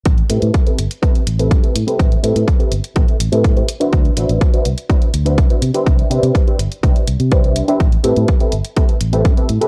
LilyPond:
<<
  \new Staff \with { instrumentName = "Analog polysynth" } { \time 4/4 \key a \dorian \tempo 4 = 124 r8 <c' g' a' b' e''>8. <c' g' a' b' e''>16 r8 <c' g' a' b' e''>8 r16 <c' g' a' b' e''>8 <c' g' a' b' e''>16 r16 <c' g' a' b' e''>16~ | <c' g' a' b' e''>8 <c' g' a' b' e''>8. <c' g' a' b' e''>16 r8 <c' g' a' b' e''>8 r16 <c' g' a' b' e''>8 <c' g' a' b' e''>16 r16 <d' fis' b' c'' e''>16~ | <d' fis' b' c'' e''>8 <d' fis' b' c'' e''>8. <d' fis' b' c'' e''>16 r8 <d' fis' b' c'' e''>8 r16 <d' fis' b' c'' e''>8 <d' fis' b' c'' e''>16 r16 <d' g' b' c'' e''>16~ | <d' g' b' c'' e''>8 <d' g' b' c'' e''>8. <d' g' b' c'' e''>16 r8 <d' g' b' c'' e''>8 r8 <d' g' b' c'' e''>8. <d' g' b' c'' e''>16 |
r8 <c' g' a' b' e''>8. <c' g' a' b' e''>16 r8 <c' g' a' b' e''>8 r16 <c' g' a' b' e''>8 <c' g' a' b' e''>16 r16 <c' g' a' b' e''>16 | }
  \new Staff \with { instrumentName = "Fingered electric bass" } { \clef bass \time 4/4 \key a \dorian a,,16 r16 a,16 a,16 r8 g,,16 r8. a,,8 g,16 r16 a,16 r16 | a,,16 r16 a,16 a,16 r8 g,,16 r16 a,,16 r16 a,,16 a,8 r8. | d,16 r16 a,,16 a,,16 r8 c,16 r8. d,8 c,16 r16 c16 r16 | c,16 r16 c16 c16 r8 g,,16 r16 c,16 r16 c,16 c16 c,8 r8 |
a,,16 r16 a,16 a,16 r8 g,,16 r8. a,,8 g,16 r16 a,16 r16 | }
  \new DrumStaff \with { instrumentName = "Drums" } \drummode { \time 4/4 <hh bd>16 hh16 hh16 hh16 <hh bd>16 hh16 hh16 hh16 <hh bd>16 hh16 hh16 hh16 <hh bd>16 hh16 hh16 hh16 | <hh bd>16 hh16 hh16 hh16 <hh bd>16 hh16 hh16 hh16 <hh bd>16 hh16 hh16 hh16 <hh bd>16 hh16 hh16 hh16 | <hh bd>16 hh16 hh16 hh16 <hh bd>16 hh16 hh16 hh16 <hh bd>16 hh16 hh16 hh16 <hh bd>16 hh16 hh16 hh16 | <hh bd>16 hh16 hh16 hh16 <hh bd>16 hh16 hh16 hh16 <hh bd>16 hh16 hh16 hh16 <hh bd>16 hh16 hh16 hh16 |
<hh bd>16 hh16 hh16 hh16 <hh bd>16 hh16 hh16 hh16 <hh bd>16 hh16 hh16 hh16 <hh bd>16 hh16 hh16 hh16 | }
>>